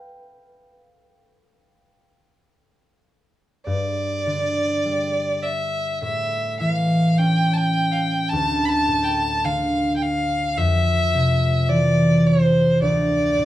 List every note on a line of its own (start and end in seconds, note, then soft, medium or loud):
0.00 2.43 B4 medium
0.00 2.43 G5 medium
3.67 6.08 G2 medium
3.67 5.45 D5 medium
4.26 6.08 D3 soft
4.86 6.08 G3 soft
5.43 6.02 E5 medium
6.02 8.38 A2 soft
6.02 6.57 E5 medium
6.60 8.38 E3 soft
6.60 7.19 F5 medium
7.18 8.39 C#4 soft
7.18 7.55 G5 medium
7.53 7.93 G5 medium
7.53 7.59 A5 medium
7.92 7.95 F5 medium
7.92 8.31 G5 medium
8.29 10.64 D2 medium
8.29 8.66 A5 medium
8.65 9.05 A5 medium
8.65 8.70 B5 medium
8.88 9.51 A2 soft
9.03 9.07 G5 medium
9.03 9.47 A5 medium
9.44 10.64 D3 soft
9.44 9.95 F5 medium
9.96 10.03 G5 medium
10.02 10.59 F5 medium
10.57 12.88 F2 medium
10.57 11.65 E5 medium
11.14 12.89 C3 soft
11.65 11.71 E5 medium
11.69 12.88 E3 soft
11.69 12.28 D5 medium
12.26 12.82 C5 medium
12.82 13.45 D2 medium
12.82 13.45 D5 medium
13.38 13.45 A2 soft